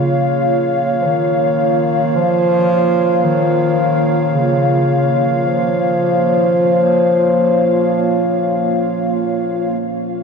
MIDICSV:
0, 0, Header, 1, 3, 480
1, 0, Start_track
1, 0, Key_signature, -5, "minor"
1, 0, Tempo, 500000
1, 9822, End_track
2, 0, Start_track
2, 0, Title_t, "Analog synth pad"
2, 0, Program_c, 0, 89
2, 0, Note_on_c, 0, 58, 67
2, 0, Note_on_c, 0, 65, 74
2, 0, Note_on_c, 0, 73, 66
2, 0, Note_on_c, 0, 77, 80
2, 9822, Note_off_c, 0, 58, 0
2, 9822, Note_off_c, 0, 65, 0
2, 9822, Note_off_c, 0, 73, 0
2, 9822, Note_off_c, 0, 77, 0
2, 9822, End_track
3, 0, Start_track
3, 0, Title_t, "Bass clarinet"
3, 0, Program_c, 1, 71
3, 0, Note_on_c, 1, 49, 96
3, 503, Note_off_c, 1, 49, 0
3, 970, Note_on_c, 1, 53, 67
3, 1016, Note_on_c, 1, 51, 80
3, 1031, Note_off_c, 1, 53, 0
3, 2071, Note_on_c, 1, 53, 106
3, 2085, Note_off_c, 1, 51, 0
3, 3111, Note_on_c, 1, 51, 88
3, 3125, Note_off_c, 1, 53, 0
3, 4168, Note_on_c, 1, 49, 78
3, 4183, Note_off_c, 1, 51, 0
3, 4959, Note_off_c, 1, 49, 0
3, 5213, Note_on_c, 1, 53, 83
3, 8844, Note_off_c, 1, 53, 0
3, 9822, End_track
0, 0, End_of_file